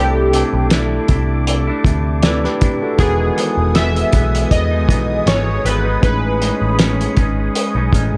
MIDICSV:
0, 0, Header, 1, 7, 480
1, 0, Start_track
1, 0, Key_signature, 4, "major"
1, 0, Tempo, 760456
1, 1888, Time_signature, 4, 2, 24, 8
1, 5159, End_track
2, 0, Start_track
2, 0, Title_t, "Analog synth pad"
2, 0, Program_c, 0, 89
2, 0, Note_on_c, 0, 69, 79
2, 0, Note_on_c, 0, 86, 89
2, 1864, Note_off_c, 0, 86, 0
2, 1866, Note_off_c, 0, 69, 0
2, 1889, Note_on_c, 0, 68, 80
2, 1889, Note_on_c, 0, 80, 77
2, 1892, Note_on_c, 0, 87, 95
2, 3790, Note_off_c, 0, 80, 0
2, 3805, Note_on_c, 0, 83, 77
2, 3807, Note_on_c, 0, 73, 77
2, 5159, Note_off_c, 0, 68, 0
2, 5159, Note_off_c, 0, 73, 0
2, 5159, Note_off_c, 0, 83, 0
2, 5159, Note_off_c, 0, 87, 0
2, 5159, End_track
3, 0, Start_track
3, 0, Title_t, "Synth keys"
3, 0, Program_c, 1, 88
3, 0, Note_on_c, 1, 67, 80
3, 420, Note_off_c, 1, 67, 0
3, 1891, Note_on_c, 1, 68, 99
3, 2369, Note_on_c, 1, 76, 110
3, 2384, Note_off_c, 1, 68, 0
3, 2849, Note_on_c, 1, 75, 97
3, 2863, Note_off_c, 1, 76, 0
3, 3329, Note_on_c, 1, 73, 100
3, 3343, Note_off_c, 1, 75, 0
3, 3552, Note_off_c, 1, 73, 0
3, 3568, Note_on_c, 1, 71, 91
3, 3791, Note_off_c, 1, 71, 0
3, 3810, Note_on_c, 1, 71, 92
3, 4264, Note_off_c, 1, 71, 0
3, 5159, End_track
4, 0, Start_track
4, 0, Title_t, "Tine electric piano"
4, 0, Program_c, 2, 4
4, 0, Control_c, 2, 64, 127
4, 0, Note_on_c, 2, 62, 67
4, 0, Note_on_c, 2, 64, 62
4, 0, Note_on_c, 2, 67, 59
4, 0, Note_on_c, 2, 69, 70
4, 1387, Note_off_c, 2, 67, 0
4, 1392, Note_off_c, 2, 69, 0
4, 1408, Note_on_c, 2, 74, 67
4, 1411, Note_on_c, 2, 71, 56
4, 1533, Note_off_c, 2, 74, 0
4, 1535, Note_off_c, 2, 71, 0
4, 1543, Note_on_c, 2, 71, 67
4, 1547, Note_on_c, 2, 67, 57
4, 1618, Note_off_c, 2, 62, 0
4, 1622, Note_off_c, 2, 64, 0
4, 1770, Note_off_c, 2, 71, 0
4, 1772, Note_off_c, 2, 67, 0
4, 1781, Note_on_c, 2, 69, 68
4, 1784, Note_on_c, 2, 66, 58
4, 1878, Note_on_c, 2, 51, 64
4, 1881, Note_off_c, 2, 66, 0
4, 1889, Note_on_c, 2, 66, 59
4, 1895, Control_c, 2, 64, 0
4, 1896, Note_on_c, 2, 68, 64
4, 1908, Note_on_c, 2, 71, 68
4, 2006, Control_c, 2, 64, 127
4, 2009, Note_off_c, 2, 69, 0
4, 3778, Note_off_c, 2, 51, 0
4, 3784, Note_off_c, 2, 66, 0
4, 3787, Note_off_c, 2, 68, 0
4, 3793, Note_off_c, 2, 71, 0
4, 3796, Note_on_c, 2, 61, 66
4, 3805, Note_on_c, 2, 63, 59
4, 3816, Control_c, 2, 64, 0
4, 3818, Note_on_c, 2, 68, 63
4, 3826, Note_on_c, 2, 71, 65
4, 3924, Control_c, 2, 64, 127
4, 5159, Note_off_c, 2, 61, 0
4, 5159, Note_off_c, 2, 63, 0
4, 5159, Note_off_c, 2, 68, 0
4, 5159, Note_off_c, 2, 71, 0
4, 5159, End_track
5, 0, Start_track
5, 0, Title_t, "Clean electric guitar"
5, 0, Program_c, 3, 27
5, 0, Note_on_c, 3, 48, 73
5, 0, Note_on_c, 3, 57, 83
5, 0, Note_on_c, 3, 62, 83
5, 0, Note_on_c, 3, 64, 81
5, 197, Note_off_c, 3, 48, 0
5, 205, Note_on_c, 3, 48, 63
5, 206, Note_off_c, 3, 57, 0
5, 209, Note_off_c, 3, 62, 0
5, 212, Note_off_c, 3, 64, 0
5, 215, Note_on_c, 3, 57, 65
5, 223, Note_on_c, 3, 62, 61
5, 228, Note_on_c, 3, 64, 62
5, 442, Note_off_c, 3, 57, 0
5, 446, Note_off_c, 3, 48, 0
5, 447, Note_off_c, 3, 62, 0
5, 449, Note_on_c, 3, 57, 89
5, 452, Note_off_c, 3, 64, 0
5, 454, Note_on_c, 3, 62, 86
5, 460, Note_on_c, 3, 64, 90
5, 680, Note_on_c, 3, 48, 63
5, 685, Note_off_c, 3, 57, 0
5, 689, Note_off_c, 3, 62, 0
5, 692, Note_on_c, 3, 57, 74
5, 694, Note_off_c, 3, 64, 0
5, 697, Note_on_c, 3, 62, 76
5, 704, Note_on_c, 3, 64, 83
5, 1048, Note_off_c, 3, 64, 0
5, 1056, Note_off_c, 3, 48, 0
5, 1056, Note_on_c, 3, 64, 72
5, 1062, Note_off_c, 3, 57, 0
5, 1062, Note_off_c, 3, 62, 0
5, 1070, Note_on_c, 3, 62, 58
5, 1081, Note_on_c, 3, 57, 59
5, 1162, Note_on_c, 3, 48, 66
5, 1166, Note_off_c, 3, 57, 0
5, 1166, Note_off_c, 3, 64, 0
5, 1173, Note_off_c, 3, 62, 0
5, 1173, Note_on_c, 3, 57, 77
5, 1180, Note_on_c, 3, 62, 69
5, 1188, Note_on_c, 3, 64, 73
5, 1397, Note_off_c, 3, 48, 0
5, 1403, Note_off_c, 3, 57, 0
5, 1404, Note_on_c, 3, 48, 94
5, 1408, Note_off_c, 3, 62, 0
5, 1411, Note_on_c, 3, 57, 91
5, 1414, Note_off_c, 3, 64, 0
5, 1416, Note_on_c, 3, 62, 94
5, 1421, Note_on_c, 3, 64, 92
5, 1529, Note_off_c, 3, 64, 0
5, 1537, Note_on_c, 3, 64, 69
5, 1538, Note_off_c, 3, 48, 0
5, 1541, Note_off_c, 3, 57, 0
5, 1542, Note_off_c, 3, 62, 0
5, 1549, Note_on_c, 3, 62, 60
5, 1561, Note_on_c, 3, 57, 52
5, 1645, Note_on_c, 3, 48, 67
5, 1646, Note_off_c, 3, 64, 0
5, 1647, Note_off_c, 3, 57, 0
5, 1653, Note_off_c, 3, 62, 0
5, 1654, Note_on_c, 3, 57, 71
5, 1664, Note_on_c, 3, 62, 73
5, 1671, Note_on_c, 3, 64, 80
5, 1773, Note_off_c, 3, 64, 0
5, 1779, Note_off_c, 3, 48, 0
5, 1781, Note_on_c, 3, 64, 54
5, 1783, Note_off_c, 3, 57, 0
5, 1785, Note_off_c, 3, 62, 0
5, 1793, Note_on_c, 3, 62, 50
5, 1802, Note_on_c, 3, 57, 42
5, 1885, Note_on_c, 3, 52, 81
5, 1888, Note_off_c, 3, 64, 0
5, 1891, Note_off_c, 3, 57, 0
5, 1893, Note_on_c, 3, 56, 79
5, 1894, Note_off_c, 3, 62, 0
5, 1897, Note_on_c, 3, 59, 89
5, 1902, Note_on_c, 3, 63, 82
5, 2114, Note_off_c, 3, 52, 0
5, 2122, Note_on_c, 3, 52, 63
5, 2123, Note_off_c, 3, 56, 0
5, 2131, Note_off_c, 3, 59, 0
5, 2131, Note_on_c, 3, 56, 60
5, 2135, Note_off_c, 3, 63, 0
5, 2139, Note_on_c, 3, 59, 64
5, 2145, Note_on_c, 3, 63, 65
5, 2355, Note_off_c, 3, 52, 0
5, 2360, Note_off_c, 3, 56, 0
5, 2362, Note_on_c, 3, 52, 84
5, 2367, Note_off_c, 3, 59, 0
5, 2368, Note_on_c, 3, 56, 86
5, 2375, Note_on_c, 3, 59, 97
5, 2377, Note_off_c, 3, 63, 0
5, 2592, Note_off_c, 3, 52, 0
5, 2599, Note_on_c, 3, 52, 61
5, 2604, Note_off_c, 3, 56, 0
5, 2611, Note_off_c, 3, 59, 0
5, 2612, Note_on_c, 3, 56, 58
5, 2618, Note_on_c, 3, 59, 70
5, 2973, Note_on_c, 3, 63, 58
5, 2976, Note_off_c, 3, 52, 0
5, 2978, Note_off_c, 3, 59, 0
5, 2982, Note_off_c, 3, 56, 0
5, 2985, Note_on_c, 3, 59, 55
5, 2996, Note_on_c, 3, 56, 49
5, 3077, Note_on_c, 3, 52, 63
5, 3080, Note_off_c, 3, 56, 0
5, 3085, Note_off_c, 3, 63, 0
5, 3087, Note_off_c, 3, 59, 0
5, 3087, Note_on_c, 3, 56, 62
5, 3094, Note_on_c, 3, 59, 67
5, 3104, Note_on_c, 3, 63, 73
5, 3315, Note_off_c, 3, 52, 0
5, 3322, Note_on_c, 3, 52, 76
5, 3323, Note_off_c, 3, 56, 0
5, 3327, Note_off_c, 3, 59, 0
5, 3330, Note_off_c, 3, 63, 0
5, 3330, Note_on_c, 3, 56, 78
5, 3334, Note_on_c, 3, 59, 79
5, 3338, Note_on_c, 3, 63, 80
5, 3442, Note_off_c, 3, 63, 0
5, 3450, Note_on_c, 3, 63, 57
5, 3456, Note_off_c, 3, 59, 0
5, 3457, Note_off_c, 3, 52, 0
5, 3461, Note_off_c, 3, 56, 0
5, 3463, Note_on_c, 3, 59, 53
5, 3472, Note_on_c, 3, 56, 46
5, 3563, Note_off_c, 3, 63, 0
5, 3563, Note_on_c, 3, 52, 63
5, 3564, Note_off_c, 3, 56, 0
5, 3570, Note_off_c, 3, 59, 0
5, 3571, Note_on_c, 3, 56, 59
5, 3579, Note_on_c, 3, 59, 67
5, 3584, Note_on_c, 3, 63, 70
5, 3683, Note_off_c, 3, 63, 0
5, 3691, Note_on_c, 3, 63, 54
5, 3698, Note_off_c, 3, 52, 0
5, 3698, Note_off_c, 3, 59, 0
5, 3702, Note_off_c, 3, 56, 0
5, 3706, Note_on_c, 3, 59, 50
5, 3716, Note_on_c, 3, 56, 48
5, 3800, Note_on_c, 3, 45, 71
5, 3802, Note_off_c, 3, 56, 0
5, 3803, Note_off_c, 3, 63, 0
5, 3809, Note_on_c, 3, 56, 80
5, 3811, Note_off_c, 3, 59, 0
5, 3815, Note_on_c, 3, 61, 84
5, 3818, Note_on_c, 3, 63, 86
5, 4032, Note_off_c, 3, 45, 0
5, 4040, Note_on_c, 3, 45, 58
5, 4043, Note_off_c, 3, 56, 0
5, 4049, Note_off_c, 3, 61, 0
5, 4050, Note_on_c, 3, 56, 64
5, 4053, Note_off_c, 3, 63, 0
5, 4057, Note_on_c, 3, 61, 56
5, 4064, Note_on_c, 3, 63, 62
5, 4274, Note_off_c, 3, 45, 0
5, 4280, Note_off_c, 3, 56, 0
5, 4282, Note_on_c, 3, 45, 83
5, 4287, Note_off_c, 3, 61, 0
5, 4288, Note_on_c, 3, 56, 82
5, 4290, Note_off_c, 3, 63, 0
5, 4294, Note_on_c, 3, 61, 85
5, 4298, Note_on_c, 3, 63, 91
5, 4522, Note_off_c, 3, 56, 0
5, 4525, Note_off_c, 3, 45, 0
5, 4529, Note_off_c, 3, 61, 0
5, 4529, Note_on_c, 3, 56, 71
5, 4533, Note_off_c, 3, 63, 0
5, 4536, Note_on_c, 3, 61, 77
5, 4544, Note_on_c, 3, 63, 75
5, 4889, Note_off_c, 3, 63, 0
5, 4896, Note_on_c, 3, 63, 60
5, 4900, Note_off_c, 3, 56, 0
5, 4901, Note_off_c, 3, 61, 0
5, 4908, Note_on_c, 3, 61, 62
5, 4918, Note_on_c, 3, 56, 56
5, 5002, Note_off_c, 3, 56, 0
5, 5003, Note_on_c, 3, 45, 69
5, 5006, Note_off_c, 3, 63, 0
5, 5010, Note_off_c, 3, 61, 0
5, 5010, Note_on_c, 3, 56, 76
5, 5018, Note_on_c, 3, 61, 71
5, 5024, Note_on_c, 3, 63, 77
5, 5159, Note_off_c, 3, 45, 0
5, 5159, Note_off_c, 3, 56, 0
5, 5159, Note_off_c, 3, 61, 0
5, 5159, Note_off_c, 3, 63, 0
5, 5159, End_track
6, 0, Start_track
6, 0, Title_t, "Picked electric bass"
6, 0, Program_c, 4, 34
6, 0, Note_on_c, 4, 36, 88
6, 265, Note_off_c, 4, 36, 0
6, 337, Note_on_c, 4, 35, 81
6, 616, Note_off_c, 4, 35, 0
6, 687, Note_on_c, 4, 36, 95
6, 1072, Note_off_c, 4, 36, 0
6, 1165, Note_on_c, 4, 38, 89
6, 1550, Note_off_c, 4, 38, 0
6, 1885, Note_on_c, 4, 28, 92
6, 2078, Note_off_c, 4, 28, 0
6, 2257, Note_on_c, 4, 28, 97
6, 2537, Note_off_c, 4, 28, 0
6, 2610, Note_on_c, 4, 35, 98
6, 2801, Note_off_c, 4, 35, 0
6, 2847, Note_on_c, 4, 40, 90
6, 3083, Note_off_c, 4, 40, 0
6, 3083, Note_on_c, 4, 35, 90
6, 3277, Note_off_c, 4, 35, 0
6, 3322, Note_on_c, 4, 32, 83
6, 3517, Note_off_c, 4, 32, 0
6, 3565, Note_on_c, 4, 32, 103
6, 3759, Note_off_c, 4, 32, 0
6, 3806, Note_on_c, 4, 33, 92
6, 4104, Note_off_c, 4, 33, 0
6, 4177, Note_on_c, 4, 33, 82
6, 4456, Note_off_c, 4, 33, 0
6, 4526, Note_on_c, 4, 32, 91
6, 4719, Note_off_c, 4, 32, 0
6, 4892, Note_on_c, 4, 35, 80
6, 4981, Note_off_c, 4, 35, 0
6, 5003, Note_on_c, 4, 33, 88
6, 5111, Note_off_c, 4, 33, 0
6, 5138, Note_on_c, 4, 32, 84
6, 5159, Note_off_c, 4, 32, 0
6, 5159, End_track
7, 0, Start_track
7, 0, Title_t, "Drums"
7, 211, Note_on_c, 9, 42, 70
7, 274, Note_off_c, 9, 42, 0
7, 444, Note_on_c, 9, 42, 100
7, 449, Note_on_c, 9, 38, 118
7, 508, Note_off_c, 9, 42, 0
7, 513, Note_off_c, 9, 38, 0
7, 684, Note_on_c, 9, 42, 68
7, 688, Note_on_c, 9, 36, 83
7, 747, Note_off_c, 9, 42, 0
7, 751, Note_off_c, 9, 36, 0
7, 930, Note_on_c, 9, 42, 93
7, 993, Note_off_c, 9, 42, 0
7, 1165, Note_on_c, 9, 36, 90
7, 1175, Note_on_c, 9, 42, 62
7, 1228, Note_off_c, 9, 36, 0
7, 1238, Note_off_c, 9, 42, 0
7, 1405, Note_on_c, 9, 42, 99
7, 1410, Note_on_c, 9, 38, 108
7, 1468, Note_off_c, 9, 42, 0
7, 1473, Note_off_c, 9, 38, 0
7, 1543, Note_on_c, 9, 38, 33
7, 1606, Note_off_c, 9, 38, 0
7, 1649, Note_on_c, 9, 42, 62
7, 1652, Note_on_c, 9, 36, 93
7, 1712, Note_off_c, 9, 42, 0
7, 1715, Note_off_c, 9, 36, 0
7, 1884, Note_on_c, 9, 42, 76
7, 1886, Note_on_c, 9, 36, 111
7, 1947, Note_off_c, 9, 42, 0
7, 1949, Note_off_c, 9, 36, 0
7, 2132, Note_on_c, 9, 42, 72
7, 2195, Note_off_c, 9, 42, 0
7, 2366, Note_on_c, 9, 42, 96
7, 2371, Note_on_c, 9, 38, 116
7, 2429, Note_off_c, 9, 42, 0
7, 2434, Note_off_c, 9, 38, 0
7, 2502, Note_on_c, 9, 42, 48
7, 2565, Note_off_c, 9, 42, 0
7, 2604, Note_on_c, 9, 42, 70
7, 2608, Note_on_c, 9, 36, 83
7, 2667, Note_off_c, 9, 42, 0
7, 2671, Note_off_c, 9, 36, 0
7, 2744, Note_on_c, 9, 42, 56
7, 2807, Note_off_c, 9, 42, 0
7, 2847, Note_on_c, 9, 36, 83
7, 2848, Note_on_c, 9, 42, 89
7, 2910, Note_off_c, 9, 36, 0
7, 2912, Note_off_c, 9, 42, 0
7, 3084, Note_on_c, 9, 36, 86
7, 3095, Note_on_c, 9, 42, 63
7, 3148, Note_off_c, 9, 36, 0
7, 3158, Note_off_c, 9, 42, 0
7, 3326, Note_on_c, 9, 42, 92
7, 3331, Note_on_c, 9, 38, 115
7, 3389, Note_off_c, 9, 42, 0
7, 3394, Note_off_c, 9, 38, 0
7, 3571, Note_on_c, 9, 42, 63
7, 3634, Note_off_c, 9, 42, 0
7, 3806, Note_on_c, 9, 36, 112
7, 3806, Note_on_c, 9, 42, 69
7, 3869, Note_off_c, 9, 36, 0
7, 3869, Note_off_c, 9, 42, 0
7, 4050, Note_on_c, 9, 42, 74
7, 4113, Note_off_c, 9, 42, 0
7, 4284, Note_on_c, 9, 42, 98
7, 4289, Note_on_c, 9, 38, 125
7, 4347, Note_off_c, 9, 42, 0
7, 4352, Note_off_c, 9, 38, 0
7, 4423, Note_on_c, 9, 42, 47
7, 4486, Note_off_c, 9, 42, 0
7, 4523, Note_on_c, 9, 42, 70
7, 4527, Note_on_c, 9, 36, 83
7, 4586, Note_off_c, 9, 42, 0
7, 4590, Note_off_c, 9, 36, 0
7, 4768, Note_on_c, 9, 42, 92
7, 4831, Note_off_c, 9, 42, 0
7, 5003, Note_on_c, 9, 36, 78
7, 5013, Note_on_c, 9, 42, 69
7, 5066, Note_off_c, 9, 36, 0
7, 5076, Note_off_c, 9, 42, 0
7, 5159, End_track
0, 0, End_of_file